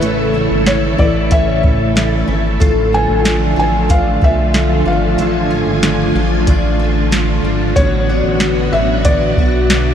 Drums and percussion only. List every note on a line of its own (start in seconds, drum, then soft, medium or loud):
0.03 closed hi-hat medium
0.66 snare loud
0.66 closed hi-hat medium
0.99 kick medium
1.31 kick medium
1.31 closed hi-hat medium
1.64 kick medium
1.97 snare loud
1.97 closed hi-hat medium
2.61 kick medium
2.61 closed hi-hat medium
3.25 snare loud
3.25 closed hi-hat medium
3.90 kick medium
3.90 closed hi-hat medium
4.22 kick medium
4.54 snare loud
4.54 closed hi-hat medium
5.19 closed hi-hat medium
5.83 snare loud
5.83 closed hi-hat medium
6.47 kick medium
6.47 closed hi-hat medium
7.12 snare loud
7.12 closed hi-hat medium
7.76 kick medium
7.76 closed hi-hat medium
8.40 snare loud
8.40 closed hi-hat medium
9.05 kick medium
9.05 closed hi-hat medium
9.38 kick medium
9.70 snare loud
9.70 closed hi-hat medium